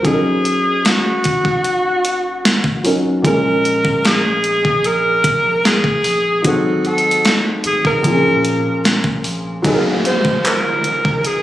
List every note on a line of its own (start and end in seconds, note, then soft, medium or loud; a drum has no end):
0.02 0.82 F#1 loud
0.02 2.79 F#3 medium
0.02 2.80 C#4 medium
0.02 2.81 D#4 medium
0.02 0.88 G#4 loud
0.02 kick loud
0.02 closed hi-hat medium
0.08 0.13 A4 medium
0.14 2.85 A#4 medium
0.45 closed hi-hat medium
0.85 2.85 F#4 loud
0.85 snare loud
0.85 closed hi-hat medium
1.24 2.61 F#1 loud
1.24 kick loud
1.24 closed hi-hat medium
1.45 kick loud
1.64 closed hi-hat medium
2.05 closed hi-hat medium
2.45 snare loud
2.45 closed hi-hat medium
2.64 3.22 F#1 loud
2.64 kick loud
2.84 3.24 F#3 medium
2.84 3.24 C#4 medium
2.84 3.25 D#4 medium
2.84 3.25 A#4 medium
2.84 open hi-hat medium
3.22 3.82 A#1 loud
3.22 6.39 A#2 medium
3.22 6.40 G#3 medium
3.22 6.41 C#4 medium
3.22 kick loud
3.22 closed hi-hat medium
3.27 3.33 G#4 medium
3.27 4.08 A#4 loud
3.34 6.45 A#4 medium
3.65 closed hi-hat medium
3.85 4.62 A#1 loud
3.85 kick medium
4.05 4.88 G#4 loud
4.05 snare loud
4.05 closed hi-hat medium
4.44 closed hi-hat medium
4.65 5.22 A#1 loud
4.65 kick loud
4.84 5.68 A#4 loud
4.84 closed hi-hat medium
5.24 5.82 A#1 loud
5.24 kick loud
5.24 closed hi-hat medium
5.65 6.46 G#4 loud
5.65 snare loud
5.65 closed hi-hat medium
5.84 6.42 A#1 loud
5.84 kick medium
6.04 open hi-hat medium
6.42 7.22 G#1 loud
6.42 8.00 G#2 medium
6.42 8.01 F#3 medium
6.42 8.02 C4 medium
6.42 kick loud
6.42 closed hi-hat medium
6.47 6.88 F#4 medium
6.47 8.03 A4 medium
6.85 7.39 A4 loud
6.85 closed hi-hat soft
6.98 closed hi-hat medium
7.11 closed hi-hat medium
7.25 snare loud
7.25 closed hi-hat medium
7.64 7.84 G#1 loud
7.64 7.84 G#4 loud
7.64 closed hi-hat medium
7.85 8.27 A#1 loud
7.85 9.22 A#4 loud
7.85 kick medium
8.02 9.60 A#2 medium
8.02 9.61 F3 medium
8.02 8.12 C4 soft
8.02 closed hi-hat medium
8.08 9.63 G#4 medium
8.12 9.65 C#4 medium
8.25 8.63 A#2 loud
8.45 closed hi-hat medium
8.85 snare loud
8.85 closed hi-hat medium
9.04 9.62 A#1 loud
9.04 kick medium
9.24 open hi-hat medium
9.62 10.22 F#1 loud
9.62 11.43 F#3 medium
9.62 11.43 D#4 medium
9.62 11.43 G#4 medium
9.62 kick loud
9.62 closed hi-hat medium
9.62 downlifter medium
9.68 9.73 A4 medium
9.74 11.43 A#4 medium
10.05 10.48 C5 medium
10.05 closed hi-hat medium
10.25 10.63 F#1 loud
10.25 kick medium
10.45 11.28 A#4 loud
10.45 clap loud
10.45 closed hi-hat medium
10.84 closed hi-hat medium
11.05 11.43 F#1 loud
11.05 kick medium
11.25 11.43 G#4 loud
11.25 closed hi-hat medium